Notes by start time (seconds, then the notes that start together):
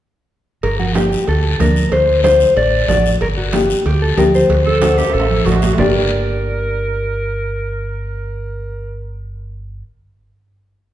0.63 G1 A#4, cowbell, high conga, long guiro
0.79 F#4, high conga
0.95 A#3 D4 G4, cowbell, high conga, short guiro
1.12 short guiro
1.28 D2 A4, cowbell, high conga, long guiro
1.59 D2 A#3 D4 A#4, cowbell, high conga, short guiro
1.76 short guiro
1.92 D2 C5, cowbell, high conga, long guiro
2.23 A3 D4 F#4 C5, cowbell, high conga, short guiro
2.40 short guiro
2.57 A1 D5, cowbell, high conga, long guiro
2.88 A1 A3 D4 F#4 D5, cowbell, high conga, low conga, short guiro
3.06 short guiro
3.21 G1 A#4, cowbell, high conga, long guiro
3.38 F#4
3.53 A#3 D4 G4, cowbell, high conga, short guiro
3.70 short guiro
3.85 D2 G4, cowbell, high conga, long guiro
4.02 A4
4.17 D2 A#3 D4 G4 A#4, cowbell, high conga, low timbale, short guiro
4.34 C5, short guiro
4.49 D2, cowbell, high conga, long guiro
4.66 A4, high conga
4.82 A3 D4 F#4, cowbell, high conga, short guiro
4.97 G4, high timbale, short guiro
5.10 A4, high conga, high timbale
5.14 A1, cowbell, long guiro
5.20 high timbale
5.30 high conga
5.45 A1 A3 D4 F#4, cowbell, high conga, low conga, short guiro
5.52 low timbale
5.62 low timbale, short guiro
5.73 A#3, low timbale
5.78 G1 D4 G4 A#4 D5, low conga, low timbale, long guiro